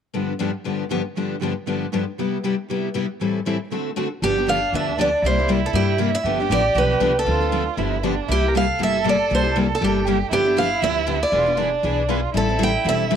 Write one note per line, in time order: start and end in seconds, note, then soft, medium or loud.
0.14 0.32 G2 medium
0.14 0.32 D3 medium
0.14 0.32 F3 medium
0.14 0.32 B3 medium
0.14 0.33 D4 medium
0.14 0.33 G4 medium
0.39 0.50 G2 medium
0.39 0.50 D3 medium
0.39 0.50 F3 medium
0.39 0.50 B3 medium
0.39 0.50 D4 medium
0.39 0.50 G4 medium
0.64 0.83 G2 medium
0.64 0.83 D3 medium
0.64 0.83 F3 medium
0.64 0.83 B3 medium
0.64 0.84 D4 medium
0.64 0.84 G4 medium
0.90 1.01 G2 medium
0.90 1.01 D3 medium
0.90 1.01 F3 medium
0.90 1.01 B3 medium
0.90 1.01 D4 medium
0.90 1.01 G4 medium
1.17 1.35 G2 medium
1.17 1.35 D3 medium
1.17 1.35 F3 medium
1.17 1.35 B3 medium
1.17 1.35 D4 medium
1.17 1.35 G4 medium
1.42 1.52 G2 medium
1.42 1.52 D3 medium
1.42 1.53 F3 medium
1.42 1.53 B3 medium
1.42 1.53 D4 medium
1.42 1.53 G4 medium
1.67 1.85 G2 medium
1.67 1.85 D3 medium
1.67 1.85 F3 medium
1.67 1.86 B3 medium
1.67 1.86 D4 medium
1.67 1.86 G4 medium
1.93 2.03 G2 medium
1.93 2.03 D3 medium
1.93 2.03 F3 medium
1.93 2.03 B3 medium
1.93 2.03 D4 medium
1.93 2.04 G4 medium
2.19 2.37 C3 medium
2.19 2.37 G3 soft
2.19 2.37 B3 medium
2.19 2.37 E4 medium
2.19 2.37 G4 medium
2.44 2.54 C3 medium
2.44 2.54 G3 medium
2.44 2.54 B3 medium
2.44 2.55 E4 medium
2.44 2.54 G4 medium
2.70 2.88 C3 medium
2.70 2.88 G3 medium
2.70 2.88 B3 medium
2.70 2.88 E4 medium
2.70 2.88 G4 medium
2.94 3.05 C3 medium
2.94 3.05 G3 medium
2.94 3.05 B3 medium
2.94 3.05 E4 medium
2.94 3.05 G4 medium
3.21 3.39 A2 medium
3.21 3.39 E3 medium
3.21 3.39 G3 medium
3.21 3.39 C4 medium
3.21 3.39 E4 medium
3.21 3.39 A4 medium
3.46 3.56 A2 medium
3.46 3.56 E3 medium
3.46 3.56 G3 medium
3.46 3.56 C4 medium
3.46 3.57 E4 medium
3.46 3.57 A4 medium
3.71 3.89 D3 medium
3.71 3.90 A3 medium
3.71 3.90 C4 medium
3.71 3.90 F#4 medium
3.71 3.90 A4 medium
3.96 4.07 D3 medium
3.96 4.06 A3 medium
3.96 4.07 C4 medium
3.96 4.07 F#4 medium
3.96 4.07 A4 medium
4.22 4.63 G1 medium
4.22 4.36 D3 medium
4.22 4.36 F3 medium
4.22 4.36 B3 medium
4.22 5.24 D4 medium
4.22 4.36 D4 medium
4.22 4.36 G4 medium
4.22 4.49 G4 medium
4.38 4.48 B3 soft
4.38 4.47 D4 soft
4.38 4.47 G4 soft
4.48 4.58 D3 medium
4.48 4.58 F3 medium
4.48 4.58 B3 medium
4.48 4.58 D4 medium
4.48 4.59 G4 medium
4.48 4.74 F5 medium
4.72 5.13 D2 medium
4.72 4.91 D3 medium
4.72 4.92 F3 medium
4.72 4.92 B3 medium
4.72 4.92 D4 medium
4.72 4.92 G4 medium
4.72 4.98 E5 medium
4.98 5.08 D3 medium
4.98 5.09 F3 medium
4.98 5.09 B3 medium
4.98 5.09 D4 medium
4.98 5.09 G4 medium
4.98 5.25 D5 medium
5.22 5.63 C2 medium
5.22 5.38 C3 medium
5.22 5.38 G3 medium
5.22 5.38 A#3 medium
5.22 6.25 E4 loud
5.22 5.38 E4 medium
5.22 5.37 G4 medium
5.22 5.49 C5 medium
5.39 5.48 A#3 soft
5.39 5.48 E4 soft
5.39 5.48 G4 soft
5.48 5.59 C3 medium
5.48 5.59 G3 medium
5.48 5.59 A#3 medium
5.48 5.59 E4 medium
5.48 5.59 G4 medium
5.66 5.70 A4 medium
5.73 6.14 G2 medium
5.73 5.92 C3 medium
5.73 5.92 G3 medium
5.73 5.92 A#3 medium
5.73 5.92 E4 medium
5.73 5.92 G4 medium
5.73 5.98 G4 medium
5.98 6.09 C3 medium
5.98 6.09 G3 medium
5.98 6.10 A#3 medium
5.98 6.10 E4 medium
5.98 6.10 G4 loud
6.15 6.38 E5 medium
6.24 6.45 G1 medium
6.24 6.39 D3 medium
6.24 6.39 F3 medium
6.24 6.39 B3 medium
6.24 6.39 D4 medium
6.24 7.26 G4 loud
6.24 6.39 G4 medium
6.40 6.50 B3 soft
6.40 6.50 D4 soft
6.40 6.50 G4 medium
6.49 6.71 A1 medium
6.49 6.61 D3 medium
6.49 6.61 F3 medium
6.49 6.61 B3 medium
6.49 6.61 D4 medium
6.49 6.61 G4 medium
6.49 6.77 D5 medium
6.75 6.97 B1 medium
6.75 6.93 D3 medium
6.75 6.94 F3 medium
6.75 6.94 B3 medium
6.75 6.94 D4 medium
6.75 6.94 G4 medium
6.75 7.18 B4 medium
7.00 7.22 C2 medium
7.00 7.11 D3 medium
7.00 7.11 F3 medium
7.00 7.11 B3 loud
7.00 7.11 D4 medium
7.00 7.11 G4 medium
7.19 7.65 A4 medium
7.26 7.67 D2 medium
7.26 7.40 D3 medium
7.26 7.40 F3 medium
7.26 7.40 C4 medium
7.26 7.40 D4 medium
7.26 7.80 F4 medium
7.26 7.40 A4 medium
7.41 7.51 C4 soft
7.41 7.51 D4 soft
7.41 7.51 A4 medium
7.52 7.62 D3 medium
7.52 7.62 F3 medium
7.52 7.62 C4 medium
7.52 7.63 D4 medium
7.52 7.63 A4 medium
7.77 8.18 G1 medium
7.77 7.96 D3 medium
7.77 7.96 F3 medium
7.77 7.96 B3 medium
7.77 7.96 D4 medium
7.77 8.05 E4 medium
7.77 7.96 G4 medium
8.03 8.13 D3 medium
8.03 8.13 F3 medium
8.03 8.13 B3 medium
8.03 8.30 D4 medium
8.03 8.14 D4 medium
8.03 8.14 G4 medium
8.28 8.69 C2 medium
8.28 8.42 C3 soft
8.28 8.42 G3 medium
8.28 8.42 A#3 medium
8.28 8.50 E4 medium
8.28 8.43 E4 medium
8.28 8.41 G4 medium
8.28 8.54 G4 medium
8.42 8.54 A#3 soft
8.42 8.54 E4 soft
8.42 8.53 G4 soft
8.48 8.56 A#4 medium
8.54 8.64 C3 medium
8.54 8.64 G3 medium
8.54 8.65 A#3 medium
8.54 8.65 E4 medium
8.54 8.65 G4 medium
8.54 10.06 A4 loud
8.54 8.81 F5 medium
8.79 9.20 G1 medium
8.79 8.97 C3 medium
8.79 8.97 G3 medium
8.79 8.97 A#3 medium
8.79 8.97 E4 medium
8.79 8.98 G4 medium
8.83 9.05 E5 medium
9.04 9.15 C3 medium
9.04 9.15 G3 medium
9.04 9.15 A#3 medium
9.04 9.15 E4 medium
9.04 9.15 G4 medium
9.09 9.33 D5 medium
9.30 9.71 C2 medium
9.30 9.44 C3 medium
9.30 9.44 G3 medium
9.30 9.44 A#3 medium
9.30 9.44 E4 medium
9.30 9.42 G4 medium
9.35 9.56 C5 medium
9.44 9.55 A#3 soft
9.44 9.55 E4 soft
9.44 9.54 G4 soft
9.56 9.66 C3 medium
9.56 9.66 G3 medium
9.56 9.66 A#3 medium
9.56 9.66 E4 medium
9.56 9.66 G4 medium
9.75 9.83 A4 medium
9.81 10.21 G1 medium
9.81 9.99 C3 medium
9.81 9.99 G3 medium
9.81 9.99 A#3 medium
9.81 9.99 E4 medium
9.81 9.99 G4 medium
9.81 10.06 G4 medium
10.05 10.17 C3 medium
10.05 10.17 G3 medium
10.05 10.17 A#3 medium
10.05 10.17 E4 loud
10.05 10.30 G4 medium
10.05 10.17 G4 medium
10.31 10.72 G1 medium
10.31 10.45 D3 medium
10.31 10.45 F3 medium
10.31 10.45 B3 medium
10.31 10.45 D4 medium
10.31 11.34 E4 loud
10.31 10.44 G4 medium
10.31 10.58 G4 medium
10.45 10.56 B3 soft
10.45 10.56 D4 soft
10.45 10.56 G4 medium
10.57 10.67 D3 medium
10.57 10.67 F3 medium
10.57 10.67 B3 medium
10.57 10.67 D4 medium
10.57 10.67 G4 medium
10.57 10.81 F5 medium
10.82 11.23 D2 medium
10.82 11.00 D3 medium
10.82 11.00 F3 medium
10.82 11.00 B3 medium
10.82 11.00 D4 medium
10.82 11.01 G4 medium
10.82 11.07 E5 medium
11.07 11.17 D3 medium
11.07 11.17 F3 medium
11.07 11.18 B3 medium
11.07 11.18 D4 medium
11.07 11.18 G4 medium
11.23 12.05 D5 medium
11.32 11.73 E1 medium
11.32 11.46 E3 medium
11.32 11.46 B3 medium
11.32 11.46 D4 medium
11.32 11.59 F4 medium
11.32 11.45 G#4 medium
11.32 11.52 B4 medium
11.46 11.56 B3 soft
11.46 11.56 D4 soft
11.46 11.56 G#4 medium
11.57 11.68 E3 medium
11.57 11.68 B3 medium
11.57 11.68 D4 medium
11.57 12.11 D4 medium
11.57 11.68 G#4 medium
11.57 11.70 B4 medium
11.83 12.24 B1 medium
11.83 12.02 E3 medium
11.83 12.02 B3 medium
11.83 12.02 D4 medium
11.83 12.02 G#4 medium
11.83 12.03 B4 medium
12.09 12.19 E3 medium
12.09 12.19 B3 medium
12.09 12.20 D4 medium
12.09 12.34 F4 medium
12.09 12.20 G#4 medium
12.09 12.20 B4 medium
12.34 12.75 A1 medium
12.34 12.48 E3 medium
12.34 12.48 G3 medium
12.34 12.48 C4 medium
12.34 13.16 E4 loud
12.34 12.49 E4 medium
12.34 12.48 A4 medium
12.34 12.62 A4 medium
12.49 12.58 C4 soft
12.49 12.58 E4 soft
12.49 12.58 A4 medium
12.59 12.70 E3 medium
12.59 12.70 G3 medium
12.59 12.70 C4 medium
12.59 12.70 E4 medium
12.59 12.70 A4 medium
12.63 12.88 G5 medium
12.84 13.16 E1 medium
12.84 13.03 E3 medium
12.84 13.04 G3 medium
12.84 13.04 C4 medium
12.84 13.04 E4 medium
12.84 13.04 A4 medium
12.89 13.13 E5 medium
13.11 13.16 E3 medium
13.11 13.16 G3 loud
13.11 13.16 C4 loud
13.11 13.16 E4 medium
13.11 13.16 A4 loud